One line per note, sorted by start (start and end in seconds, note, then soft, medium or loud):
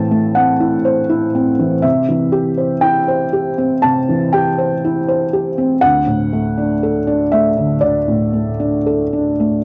0.00 1.80 A2 medium
0.00 1.59 E3 medium
0.00 0.11 A3 soft
0.00 0.36 C4 medium
0.00 0.60 E4 medium
0.00 0.85 C5 medium
0.00 1.86 G5 medium
0.00 0.35 A5 medium
0.11 0.51 A3 medium
0.35 0.76 C4 soft
0.35 1.83 F#5 medium
0.60 1.00 E4 soft
0.85 1.25 C5 medium
1.09 1.49 E4 medium
1.35 1.74 C4 medium
1.59 1.84 E3 medium
1.82 3.80 C3 medium
1.82 2.83 E5 medium
2.09 2.48 E3 medium
2.32 2.73 G4 medium
2.57 2.98 C5 soft
2.81 3.23 E4 medium
2.81 3.83 G5 medium
3.08 3.49 C5 medium
3.33 3.74 G4 soft
3.58 3.99 C4 medium
3.82 5.80 C3 medium
3.82 4.33 A5 medium
4.09 4.49 E3 soft
4.33 4.74 G4 soft
4.33 5.83 G5 medium
4.58 4.99 C5 medium
4.85 5.24 E4 medium
5.08 5.49 C5 medium
5.33 5.73 G4 medium
5.58 5.83 C4 soft
5.81 7.79 D2 medium
5.81 7.32 F#5 medium
6.06 6.48 A2 soft
6.33 6.73 A3 medium
6.57 6.98 D4 soft
6.83 7.23 A4 soft
7.07 7.48 D4 medium
7.32 7.73 A3 soft
7.32 7.82 E5 medium
7.57 7.98 D3 soft
7.81 9.64 D2 soft
7.81 9.64 D5 medium
8.08 8.50 A2 soft
8.33 8.76 A3 soft
8.60 9.02 D4 soft
8.86 9.29 A4 soft
9.13 9.57 D4 soft
9.40 9.64 A3 soft